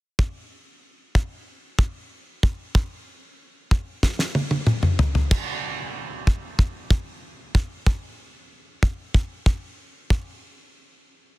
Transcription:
0.19 kick
1.15 kick
1.79 kick
2.43 kick
2.75 kick
3.71 kick
4.03 kick, snare
4.19 snare
4.35 high tom
4.51 high tom
4.67 mid tom
4.83 mid tom
4.99 floor tom
5.15 floor tom
5.31 kick, crash
6.27 kick
6.59 kick
6.90 kick
7.55 kick
7.86 kick
8.83 kick
9.14 kick
9.46 kick
10.10 kick

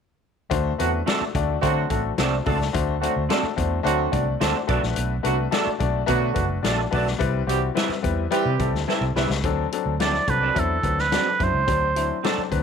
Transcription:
0.50 D2 A3 D4 F#4 C5, kick, closed hi-hat
0.78 E2 D3 F#3 A3 C4 D4 F#4 B4, closed hi-hat
1.06 A3 C4 D4 F#4 A4 D5, snare, closed hi-hat
1.21 muted fingered electric bass stroke
1.35 D2 A3 D4 F#4 D5, kick, closed hi-hat
1.61 D3 F#3 A3 C4 D4 F#4 C5, kick, closed hi-hat
1.90 A1 A3 D4 F#4 A4, kick, closed hi-hat
2.18 C2 A3 C4 D4 F#4 A4 C5 D5, snare, closed hi-hat
2.46 C#2 A3 C4 D4 F#4 A4 D5, kick, open hi-hat
2.61 snare
2.73 D2 A3 D4 F#4 C5, kick, closed hi-hat
3.01 D3 F#3 A3 C4 D4 F#4 C5, closed hi-hat
3.16 D2
3.29 A3 C4 D4 F#4 A4 D5, snare, closed hi-hat
3.43 muted fingered electric bass stroke
3.56 E2 A3 D4 F#4 C5, kick, closed hi-hat
3.83 D2 D3 F#3 A3 C4 D4 F#4 C5, closed hi-hat
4.12 C2 A3 D4 F#4 D5, kick, closed hi-hat
4.40 D2 A3 C4 D4 F#4 A4 C5 D5, snare, closed hi-hat
4.67 B1 A3 B3 D4 F#4 A4 B4 D5, kick, closed hi-hat
4.83 A#1, snare
4.96 B1, closed hi-hat
5.23 C2 D3 F#3 A3 B3 D4 F#4 B4, closed hi-hat
5.51 A3 B3 D4 F#4 A4 D5, snare, closed hi-hat
5.67 muted fingered electric bass stroke
5.79 B1 A3 D4 F#4 D5, kick, closed hi-hat
6.06 B2 D3 F#3 A3 B3 D4 F#4 B4, kick, closed hi-hat
6.34 F#1 A3 D4 F#4 B4, kick, closed hi-hat
6.63 A#1 A3 B3 D4 F#4 A4 D5, snare, closed hi-hat
6.91 B1 A3 B3 D4 F#4 A4 B4 D5, kick, open hi-hat
7.07 snare
7.18 C2 G3 C4 E4 B4, kick, closed hi-hat
7.47 C2 E3 G3 C4 E4 F#4 G4, closed hi-hat
7.75 G3 C4 E4 G4 B4 E5, snare, closed hi-hat
7.89 muted fingered electric bass stroke, snare
8.02 E2 G3 C4 E4 B4, kick, closed hi-hat
8.31 E3 G3 C4 E4 G4 B4, closed hi-hat
8.45 C3
8.59 C2 G3 C4 E4 A4, kick, closed hi-hat
8.73 D2, snare
8.87 G3 C4 E4 G4 A4 B4 E5, snare
9.01 C2
9.15 C2 G3 C4 E4 G4 B4 E5, snare
9.30 C#2, snare
9.44 D2 F#3 C4 D4 A4, kick, closed hi-hat
9.72 F#3 C4 D4 A4, closed hi-hat
9.86 D2
10.00 F#3 C4 D4 E4 F#4 A4 D5, snare, closed hi-hat
10.14 snare
10.28 C2 F#3 C4 D4 A4 B4, kick, closed hi-hat
10.42 C4 F#4 A4 D5
10.55 E2 F#3 C4 D4 E4, kick, closed hi-hat
10.59 A4
10.83 D2 F#3 C4 D4 B4, kick, closed hi-hat
10.99 B4, snare
11.12 F#3 C4 D4 F#4 A4 D5, snare, closed hi-hat
11.39 F#2 F#3 C4 D4 E4, kick, closed hi-hat
11.43 C5
11.53 C#2
11.67 D2 F#3 C4 D4 C5, kick, closed hi-hat
11.96 F#3 C4 D4 E4, closed hi-hat
12.23 F#3 C4 D4 F#4 A4 D5, snare, closed hi-hat
12.38 muted fingered electric bass stroke
12.51 D2 F#3 C4 D4 B4, kick, closed hi-hat

